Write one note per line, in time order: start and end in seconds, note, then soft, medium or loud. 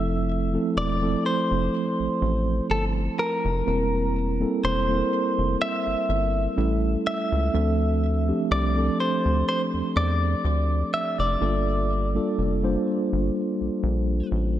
0.00 0.57 F1 loud
0.00 0.32 F3 medium
0.00 0.33 A3 medium
0.00 0.33 C4 medium
0.00 0.33 E4 medium
0.00 0.33 A4 medium
0.00 0.73 E5 loud
0.53 0.88 F3 medium
0.53 0.88 A3 medium
0.53 0.88 C4 medium
0.53 0.88 E4 medium
0.53 0.89 A4 medium
0.76 1.15 E1 loud
0.76 1.26 D5 medium
1.01 2.43 F3 medium
1.01 2.43 A3 medium
1.01 2.44 C4 medium
1.01 2.44 E4 medium
1.01 2.44 A4 medium
1.26 2.66 C5 loud
1.51 1.69 F1 medium
1.99 2.08 A1 soft
2.21 2.60 A1 loud
2.70 3.09 G1 medium
2.70 2.84 A4 medium
3.19 4.60 A#4 medium
3.45 3.62 F1 loud
3.66 4.44 E1 loud
3.66 4.20 G3 medium
3.66 4.20 A#3 medium
3.66 4.20 C4 medium
3.66 4.20 E4 medium
3.66 4.20 A#4 medium
4.40 4.75 G3 medium
4.40 4.75 A#3 medium
4.40 4.75 C4 medium
4.40 4.75 E4 medium
4.40 4.76 A4 medium
4.64 5.02 E1 medium
4.64 5.57 C5 medium
4.88 6.30 G3 medium
4.88 6.31 A#3 medium
4.88 6.31 C4 medium
4.88 6.31 E4 medium
4.88 4.96 A4 medium
4.97 6.34 A#4 medium
5.38 5.56 F1 medium
5.62 7.06 E5 loud
5.87 5.95 G1 soft
6.09 6.48 G1 medium
6.56 6.96 A1 loud
6.56 7.35 G3 medium
6.56 7.35 A3 medium
6.56 7.36 C#4 medium
6.56 7.36 E4 medium
6.56 7.36 A4 medium
7.07 8.51 E5 loud
7.32 7.49 C#2 medium
7.53 8.32 D2 loud
7.53 8.07 F3 medium
7.53 8.07 A3 medium
7.53 8.07 C4 medium
7.53 8.07 D4 medium
7.53 8.07 A4 medium
8.27 8.62 F3 medium
8.27 8.62 A3 medium
8.27 8.62 C4 medium
8.27 8.63 D4 medium
8.27 8.63 G4 medium
8.51 8.89 C2 loud
8.51 9.00 D5 loud
8.76 10.17 F3 medium
8.76 10.18 A3 medium
8.76 10.18 C4 medium
8.76 10.18 D4 medium
8.76 10.18 A4 medium
9.00 9.44 C5 medium
9.25 9.43 D2 medium
9.49 9.61 C5 loud
9.73 9.82 E2 soft
9.96 10.35 E2 medium
9.96 10.93 D5 loud
10.44 10.83 D2 medium
10.94 11.19 E5 medium
11.19 11.36 F1 medium
11.19 14.28 D5 medium
11.40 12.19 G1 loud
11.40 11.94 G3 medium
11.40 11.94 A#3 medium
11.40 11.94 D4 medium
11.40 11.94 F4 medium
11.40 11.95 A4 medium
12.14 12.49 G3 medium
12.14 12.49 A#3 medium
12.14 12.49 D4 medium
12.14 12.50 F4 medium
12.14 12.50 A4 medium
12.38 12.77 F1 medium
12.63 14.05 G3 medium
12.63 14.05 A#3 medium
12.63 14.05 D4 medium
12.63 14.05 F4 medium
12.63 14.05 C5 loud
13.12 13.30 G1 medium
13.61 13.69 A#1 soft
13.83 14.22 A#1 medium
14.31 14.60 A1 loud